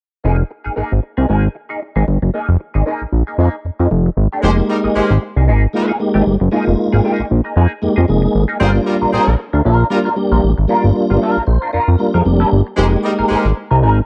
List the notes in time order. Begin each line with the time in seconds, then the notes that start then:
0.24 F1 A#3 D#4 G#4
0.39 muted clean electric guitar stroke
0.50 muted clean electric guitar stroke
0.64 G#1 A#3 D#4 G#4
0.76 G#1 A#3 D#4 G#4
0.92 G#1
1.03 muted clean electric guitar stroke
1.17 C2 A#3 D#4 G#4
1.29 G#1 A#3 D#4 G#4
1.55 muted clean electric guitar stroke
1.69 A#3 D#4 G#4
1.82 muted clean electric guitar stroke
1.96 G#1 A#3 D#4 G#4
2.07 G1, muted clean electric guitar stroke
2.22 F#1, muted clean electric guitar stroke
2.34 A#3 D#4 G#4
2.49 F1, muted clean electric guitar stroke
2.60 muted clean electric guitar stroke
2.74 G#1 A#3 D#4 G#4
2.86 A#3 D#4 G#4
3.01 A#1
3.13 A#1, muted clean electric guitar stroke
3.27 A#3 D#4 G#4
3.38 F2 A#3 D#4 G#4
3.65 F2, muted clean electric guitar stroke
3.79 F2 A#3 D#4 G#4
3.91 F1, muted clean electric guitar stroke
4.06 muted clean electric guitar stroke
4.17 G#1
4.32 A#3 D#4 G#4
4.43 F1 G#3 A#3 D#4 G4 G#4 C5
4.59 muted clean electric guitar stroke
4.70 G3 D#4 A#4, muted clean electric guitar stroke
4.84 G#1 A#3 D#4 G#4
4.96 G#1 G#3 A#3 D#4 G4 G#4 C5
5.11 G#1
5.22 muted clean electric guitar stroke
5.36 C2 A#3 D#4 G#4
5.47 G#1 A#3 D#4 G#4
5.73 G3 G#3 A#3 D#4 F4 A#4, muted clean electric guitar stroke
5.88 A#3 D#4 G#4
6.00 G#3 A#3 D#4 G4, muted clean electric guitar stroke
6.14 G#1 A#3 D#4 G#4
6.26 G1, muted clean electric guitar stroke
6.40 F#1, muted clean electric guitar stroke
6.52 G#3 A#3 D#4 F4 G#4
6.67 F1
6.78 muted clean electric guitar stroke
6.93 G#1 A#3 D#4 G#4
7.04 A#3 D#4 G#4
7.20 A#1
7.31 A#1, muted clean electric guitar stroke
7.44 A#3 D#4 G#4
7.56 F2 A#3 D#4 G#4
7.82 F2 G#3 A#3 D#4 G4, muted clean electric guitar stroke
7.96 F2 A#3 D#4 G#4
8.08 F1 G#3 A#3 D#4 G#4, muted clean electric guitar stroke
8.22 muted clean electric guitar stroke
8.35 G#1
8.48 A#3 D#4 G#4
8.60 G1 G3 A#3 C4 D4 F4 G#4 A#4 C5
8.75 muted clean electric guitar stroke
8.86 G3 F4 A#4, muted clean electric guitar stroke
9.02 A#1 D4 F4 A#4
9.13 A#1 C4 D4 F4 G#4 A#4 C5
9.28 A#1
9.38 muted clean electric guitar stroke
9.53 D2 D4 F4 A#4
9.65 A#1 D4 F4 A#4
9.90 G3 A#3 D4 F4 A#4, muted clean electric guitar stroke
10.05 D4 F4 A#4
10.16 G3 A#3 D4 G4, muted clean electric guitar stroke
10.32 A#1 D4 F4 A#4
10.44 A1
10.58 G#1, muted clean electric guitar stroke
10.68 G3 A#3 D4 F4 A#4
10.84 G1, muted clean electric guitar stroke
10.95 muted clean electric guitar stroke
11.10 G1 D4 F4 A#4
11.22 D4 F4 A#4
11.37 A#1
11.47 A#1 C5, muted clean electric guitar stroke
11.62 D4 F4 A#4
11.73 F2 D4 F4 A#4
11.88 F2
11.98 G3 A#3 D4 F4, muted clean electric guitar stroke
12.14 F2 D4 F4 G#4 A#4
12.25 F1 G3 A#3 D4 G4, muted clean electric guitar stroke
12.40 D4 F4 A#4
12.52 G1
12.67 muted clean electric guitar stroke
12.76 F1 G3 G#3 A#3 D#4 G4 G#4 A#4 C5
12.83 G#3
12.92 muted clean electric guitar stroke
13.03 G3 D#4 A#4, muted clean electric guitar stroke
13.19 G#1 D#4 G#4 A#4
13.29 G#1 G#3 D#4 G4 G#4 A#4 C5
13.45 G#1
13.56 muted clean electric guitar stroke
13.71 C2 D#4 G#4 A#4
13.82 G#1 D#4 G#4 A#4